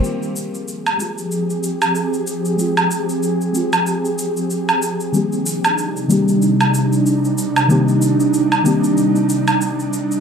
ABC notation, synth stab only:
X:1
M:4/4
L:1/8
Q:"Swing 16ths" 1/4=94
K:Fdor
V:1 name="Synth stab"
[A,CF]3 [A,CF]4- [A,CF] | [A,CF]3 [A,CF]4- [A,CF] | [E,G,B,CG]3 [E,G,B,CG]4- [E,G,B,CG] | [E,G,B,CG]3 [E,G,B,CG]4- [E,G,B,CG] |]